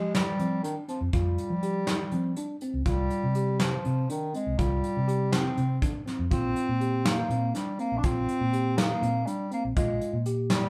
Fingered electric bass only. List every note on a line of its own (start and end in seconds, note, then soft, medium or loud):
0.00 0.30 F3 medium
0.39 0.60 F3 medium
1.01 1.11 F2 medium
1.13 1.34 F2 medium
1.50 2.02 F3 medium
2.12 2.33 F3 medium
2.74 2.84 C#2 medium
2.86 3.07 C2 medium
3.23 3.75 C3 medium
3.86 4.06 C3 medium
4.47 4.57 C2 medium
4.59 4.79 C2 medium
4.97 5.48 C3 medium
5.57 5.78 C3 medium
6.19 6.29 F2 medium
6.31 6.52 A#1 medium
6.69 7.21 A#2 medium
7.30 7.51 A#2 medium
7.92 8.02 A#1 medium
8.04 8.25 A#1 medium
8.41 8.93 A#2 medium
9.02 9.23 A#2 medium
9.65 9.75 A#1 medium
9.77 9.98 A#1 medium
10.13 10.66 A#2 medium